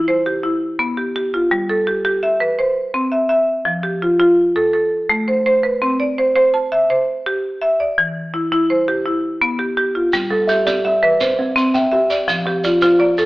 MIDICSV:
0, 0, Header, 1, 4, 480
1, 0, Start_track
1, 0, Tempo, 358852
1, 2022, Time_signature, 12, 3, 24, 8
1, 17731, End_track
2, 0, Start_track
2, 0, Title_t, "Kalimba"
2, 0, Program_c, 0, 108
2, 13782, Note_on_c, 0, 55, 86
2, 14010, Note_on_c, 0, 76, 59
2, 14258, Note_on_c, 0, 74, 63
2, 14267, Note_off_c, 0, 55, 0
2, 14507, Note_on_c, 0, 55, 75
2, 14737, Note_off_c, 0, 76, 0
2, 14753, Note_on_c, 0, 76, 60
2, 14984, Note_off_c, 0, 74, 0
2, 14989, Note_off_c, 0, 55, 0
2, 15231, Note_on_c, 0, 60, 85
2, 15471, Note_off_c, 0, 76, 0
2, 15706, Note_on_c, 0, 79, 62
2, 15710, Note_off_c, 0, 60, 0
2, 15950, Note_on_c, 0, 67, 86
2, 16421, Note_on_c, 0, 77, 65
2, 16427, Note_off_c, 0, 79, 0
2, 16429, Note_off_c, 0, 67, 0
2, 16661, Note_on_c, 0, 53, 84
2, 16904, Note_off_c, 0, 77, 0
2, 16907, Note_on_c, 0, 74, 57
2, 17144, Note_off_c, 0, 53, 0
2, 17146, Note_on_c, 0, 72, 66
2, 17376, Note_on_c, 0, 53, 77
2, 17626, Note_off_c, 0, 74, 0
2, 17731, Note_off_c, 0, 53, 0
2, 17731, Note_off_c, 0, 72, 0
2, 17731, End_track
3, 0, Start_track
3, 0, Title_t, "Marimba"
3, 0, Program_c, 1, 12
3, 0, Note_on_c, 1, 64, 73
3, 106, Note_on_c, 1, 72, 63
3, 346, Note_off_c, 1, 64, 0
3, 350, Note_on_c, 1, 67, 60
3, 579, Note_on_c, 1, 64, 61
3, 824, Note_off_c, 1, 72, 0
3, 826, Note_off_c, 1, 67, 0
3, 1059, Note_on_c, 1, 59, 73
3, 1301, Note_off_c, 1, 64, 0
3, 1302, Note_on_c, 1, 67, 55
3, 1534, Note_off_c, 1, 67, 0
3, 1540, Note_off_c, 1, 59, 0
3, 1550, Note_on_c, 1, 67, 66
3, 1792, Note_on_c, 1, 65, 53
3, 2024, Note_on_c, 1, 55, 75
3, 2026, Note_off_c, 1, 67, 0
3, 2267, Note_off_c, 1, 65, 0
3, 2267, Note_on_c, 1, 69, 58
3, 2503, Note_off_c, 1, 55, 0
3, 2503, Note_on_c, 1, 67, 57
3, 2723, Note_off_c, 1, 67, 0
3, 2739, Note_on_c, 1, 67, 76
3, 2980, Note_on_c, 1, 76, 63
3, 2984, Note_off_c, 1, 69, 0
3, 3216, Note_on_c, 1, 71, 68
3, 3220, Note_off_c, 1, 67, 0
3, 3459, Note_off_c, 1, 71, 0
3, 3460, Note_on_c, 1, 72, 60
3, 3701, Note_off_c, 1, 76, 0
3, 3934, Note_on_c, 1, 60, 70
3, 4169, Note_on_c, 1, 76, 60
3, 4181, Note_off_c, 1, 72, 0
3, 4388, Note_off_c, 1, 76, 0
3, 4404, Note_on_c, 1, 76, 70
3, 4418, Note_off_c, 1, 60, 0
3, 4885, Note_on_c, 1, 53, 72
3, 4893, Note_off_c, 1, 76, 0
3, 5126, Note_on_c, 1, 67, 59
3, 5374, Note_off_c, 1, 53, 0
3, 5381, Note_on_c, 1, 65, 62
3, 5596, Note_off_c, 1, 65, 0
3, 5612, Note_on_c, 1, 65, 78
3, 5855, Note_off_c, 1, 67, 0
3, 6097, Note_off_c, 1, 65, 0
3, 6097, Note_on_c, 1, 69, 70
3, 6317, Note_off_c, 1, 69, 0
3, 6333, Note_on_c, 1, 69, 55
3, 6815, Note_on_c, 1, 57, 74
3, 7059, Note_off_c, 1, 69, 0
3, 7061, Note_on_c, 1, 72, 59
3, 7289, Note_off_c, 1, 72, 0
3, 7299, Note_off_c, 1, 57, 0
3, 7305, Note_on_c, 1, 72, 72
3, 7535, Note_on_c, 1, 71, 57
3, 7781, Note_on_c, 1, 60, 74
3, 7785, Note_off_c, 1, 72, 0
3, 8020, Note_off_c, 1, 71, 0
3, 8022, Note_on_c, 1, 74, 57
3, 8263, Note_off_c, 1, 60, 0
3, 8270, Note_on_c, 1, 72, 64
3, 8486, Note_off_c, 1, 72, 0
3, 8502, Note_on_c, 1, 72, 79
3, 8744, Note_off_c, 1, 74, 0
3, 8744, Note_on_c, 1, 81, 60
3, 8984, Note_off_c, 1, 72, 0
3, 8988, Note_on_c, 1, 76, 73
3, 9231, Note_on_c, 1, 72, 60
3, 9466, Note_off_c, 1, 81, 0
3, 9468, Note_off_c, 1, 76, 0
3, 9716, Note_on_c, 1, 67, 71
3, 9950, Note_off_c, 1, 72, 0
3, 10186, Note_on_c, 1, 76, 67
3, 10192, Note_off_c, 1, 67, 0
3, 10434, Note_on_c, 1, 74, 55
3, 10668, Note_off_c, 1, 76, 0
3, 10674, Note_on_c, 1, 52, 67
3, 10912, Note_off_c, 1, 74, 0
3, 11152, Note_off_c, 1, 52, 0
3, 11152, Note_on_c, 1, 64, 58
3, 11381, Note_off_c, 1, 64, 0
3, 11398, Note_on_c, 1, 64, 78
3, 11638, Note_on_c, 1, 72, 60
3, 11874, Note_off_c, 1, 64, 0
3, 11879, Note_on_c, 1, 67, 69
3, 12114, Note_on_c, 1, 64, 60
3, 12355, Note_off_c, 1, 67, 0
3, 12355, Note_off_c, 1, 72, 0
3, 12593, Note_on_c, 1, 59, 76
3, 12827, Note_on_c, 1, 67, 58
3, 12833, Note_off_c, 1, 64, 0
3, 13054, Note_off_c, 1, 67, 0
3, 13070, Note_on_c, 1, 67, 66
3, 13072, Note_off_c, 1, 59, 0
3, 13311, Note_on_c, 1, 65, 51
3, 13551, Note_off_c, 1, 67, 0
3, 13554, Note_on_c, 1, 55, 78
3, 13783, Note_on_c, 1, 69, 59
3, 13791, Note_off_c, 1, 65, 0
3, 14032, Note_on_c, 1, 67, 62
3, 14033, Note_off_c, 1, 55, 0
3, 14255, Note_off_c, 1, 67, 0
3, 14271, Note_on_c, 1, 67, 74
3, 14507, Note_off_c, 1, 69, 0
3, 14511, Note_on_c, 1, 76, 67
3, 14750, Note_on_c, 1, 71, 73
3, 14751, Note_off_c, 1, 67, 0
3, 14990, Note_off_c, 1, 71, 0
3, 14992, Note_on_c, 1, 72, 62
3, 15231, Note_off_c, 1, 76, 0
3, 15460, Note_on_c, 1, 60, 79
3, 15710, Note_on_c, 1, 76, 63
3, 15711, Note_off_c, 1, 72, 0
3, 15923, Note_off_c, 1, 76, 0
3, 15939, Note_on_c, 1, 76, 67
3, 15945, Note_off_c, 1, 60, 0
3, 16186, Note_on_c, 1, 74, 59
3, 16423, Note_off_c, 1, 76, 0
3, 16425, Note_on_c, 1, 53, 74
3, 16667, Note_off_c, 1, 74, 0
3, 16676, Note_on_c, 1, 67, 62
3, 16906, Note_off_c, 1, 53, 0
3, 16917, Note_on_c, 1, 65, 61
3, 17137, Note_off_c, 1, 65, 0
3, 17153, Note_on_c, 1, 65, 77
3, 17385, Note_on_c, 1, 74, 71
3, 17391, Note_off_c, 1, 67, 0
3, 17629, Note_off_c, 1, 65, 0
3, 17630, Note_on_c, 1, 69, 74
3, 17731, Note_off_c, 1, 69, 0
3, 17731, Note_off_c, 1, 74, 0
3, 17731, End_track
4, 0, Start_track
4, 0, Title_t, "Shekere"
4, 13550, Note_on_c, 9, 82, 82
4, 13684, Note_off_c, 9, 82, 0
4, 14026, Note_on_c, 9, 82, 56
4, 14160, Note_off_c, 9, 82, 0
4, 14272, Note_on_c, 9, 82, 73
4, 14406, Note_off_c, 9, 82, 0
4, 14988, Note_on_c, 9, 82, 72
4, 15122, Note_off_c, 9, 82, 0
4, 15480, Note_on_c, 9, 82, 66
4, 15614, Note_off_c, 9, 82, 0
4, 15710, Note_on_c, 9, 82, 69
4, 15844, Note_off_c, 9, 82, 0
4, 16190, Note_on_c, 9, 82, 62
4, 16324, Note_off_c, 9, 82, 0
4, 16433, Note_on_c, 9, 82, 76
4, 16567, Note_off_c, 9, 82, 0
4, 16908, Note_on_c, 9, 82, 55
4, 17042, Note_off_c, 9, 82, 0
4, 17142, Note_on_c, 9, 82, 71
4, 17276, Note_off_c, 9, 82, 0
4, 17626, Note_on_c, 9, 82, 53
4, 17731, Note_off_c, 9, 82, 0
4, 17731, End_track
0, 0, End_of_file